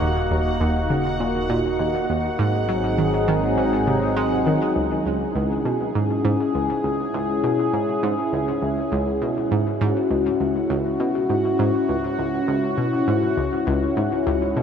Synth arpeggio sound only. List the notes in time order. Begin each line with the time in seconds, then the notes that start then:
0.01 D#2
0.31 D#2
0.60 D#2
0.90 C#3
1.20 A#2
1.50 A#2
1.79 D#2
2.10 D#2
2.39 G#2
2.69 F#3
2.98 D#3
3.28 D#3
3.58 G#2
3.87 C3
4.17 G#3
4.47 D#3
4.76 C#2
5.06 C#2
5.35 C#2
5.65 B2
5.95 G#2
6.25 G#2
6.54 C#2
6.84 C#2
7.14 C#2
7.44 B2
7.73 G#2
8.03 G#2
8.33 C#2
8.62 C#2
8.92 C#2
9.22 B2
9.52 G#2
9.81 G#2
10.11 C#2
10.40 C#2
10.70 C#2
11.00 B2
11.30 G#2
11.59 G#2
11.89 C#2
12.19 C#2
12.48 C#2
12.78 B2
13.08 G#2
13.37 C#2
13.67 C#2
13.97 G#2
14.27 C#2
14.57 B2